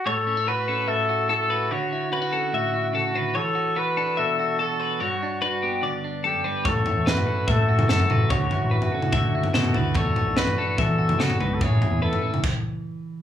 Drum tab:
CC |----------------|----------------|----------------|----------------|
SD |----------------|----------------|----------------|----------------|
T2 |----------------|----------------|----------------|----------------|
FT |----------------|----------------|----------------|----------------|
BD |----------------|----------------|----------------|----------------|

CC |----------------|----------------|----------------|--------x-------|
SD |----o-------o---|------------o---|----o-------o---|----------------|
T2 |-----------o--o-|-------o----o-o-|-----------o--o-|-------o--------|
FT |o-o--o--o--o-o--|o-o--o--o--o-o--|o-o--o--o--o-o--|o-o--o----------|
BD |o-------o-------|o-------o-------|o-------o-------|o-------o-------|